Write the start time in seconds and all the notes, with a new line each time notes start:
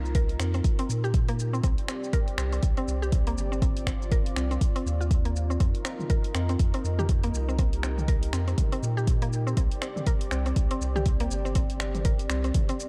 Already playing: C2 D#4 F4 A#4
0.05 shaker
0.15 A#4, kick, closed hi-hat, shaker
0.29 closed hi-hat
0.40 F2 C4, finger snap, shaker
0.54 C4, closed hi-hat, shaker
0.64 kick, closed hi-hat, shaker
0.79 C4, closed hi-hat
0.89 A#2, shaker
1.04 G4, shaker
1.14 kick, closed hi-hat, shaker
1.28 A#3, closed hi-hat
1.39 shaker
1.53 C4, shaker
1.63 C2 C4 G4 D5, kick, closed hi-hat, shaker
1.78 closed hi-hat
1.88 C4, finger snap, shaker
2.04 shaker
2.13 A#4, kick, closed hi-hat, shaker
2.28 closed hi-hat
2.38 C2 C4, finger snap, shaker
2.53 C4, closed hi-hat, shaker
2.63 C2, kick, closed hi-hat, shaker
2.77 C4, closed hi-hat
2.88 C2, shaker
3.02 G4, shaker
3.12 kick, closed hi-hat, shaker
3.27 A#3, closed hi-hat
3.37 G1, shaker
3.52 C4, shaker
3.62 C4 F4, kick, closed hi-hat, shaker
3.77 closed hi-hat, shaker
3.87 C4, finger snap, kick, shaker
4.02 shaker
4.12 A#4, kick, closed hi-hat, shaker
4.26 closed hi-hat
4.36 C2 C4, finger snap, shaker
4.51 C4, closed hi-hat, shaker
4.61 kick, closed hi-hat, shaker
4.76 C4, closed hi-hat
4.86 D#2, shaker
5.01 F4, shaker
5.11 kick, closed hi-hat, shaker
5.25 A#3, closed hi-hat
5.36 shaker
5.50 C4, shaker
5.60 F2 C4 D#4 A#4, kick, closed hi-hat, shaker
5.75 closed hi-hat
5.85 C4, finger snap, shaker
6.00 mid tom, shaker
6.10 A#4, kick, closed hi-hat, shaker
6.24 closed hi-hat
6.35 F2 C4, finger snap, shaker
6.49 C4, closed hi-hat, shaker
6.59 F2, kick, closed hi-hat, shaker
6.74 C4, closed hi-hat
6.84 F2, shaker
6.99 G4, mid tom, shaker
7.09 kick, closed hi-hat, shaker
7.24 A#3, closed hi-hat
7.34 C2, shaker
7.49 C4, shaker
7.58 C4 G4, kick, closed hi-hat, shaker
7.73 closed hi-hat
7.83 C4, finger snap, shaker
7.98 mid tom, shaker
8.08 A#4, kick, closed hi-hat, shaker
8.23 closed hi-hat
8.33 F2 C4, finger snap, shaker
8.48 C4, closed hi-hat, shaker
8.58 kick, closed hi-hat, mid tom, shaker
8.72 C4, closed hi-hat
8.83 A#2, shaker
8.97 G4, shaker
9.07 kick, closed hi-hat, shaker
9.22 A#3, closed hi-hat
9.33 shaker
9.47 C4, shaker
9.57 C2 C4 D5, kick, closed hi-hat, shaker
9.72 closed hi-hat
9.82 C4, finger snap, shaker
9.96 mid tom, shaker
10.07 A#4, kick, closed hi-hat, shaker
10.21 closed hi-hat
10.31 C2 C4, finger snap, shaker
10.46 C4, closed hi-hat, shaker
10.56 C2, kick, closed hi-hat, shaker
10.71 C4, closed hi-hat
10.81 C2, shaker
10.96 G4, mid tom, shaker
11.06 kick, closed hi-hat, shaker
11.20 A#3, closed hi-hat
11.31 G1, shaker
11.45 C4, shaker
11.55 C4, kick, closed hi-hat, shaker
11.70 closed hi-hat, shaker
11.80 C4, finger snap, shaker
11.95 closed hi-hat, mid tom, shaker
12.05 A#4, kick, closed hi-hat, shaker
12.19 closed hi-hat, shaker
12.30 C2 C4, finger snap, shaker
12.44 C4, closed hi-hat, shaker
12.54 kick, closed hi-hat, mid tom, shaker
12.69 C4, closed hi-hat, shaker
12.80 shaker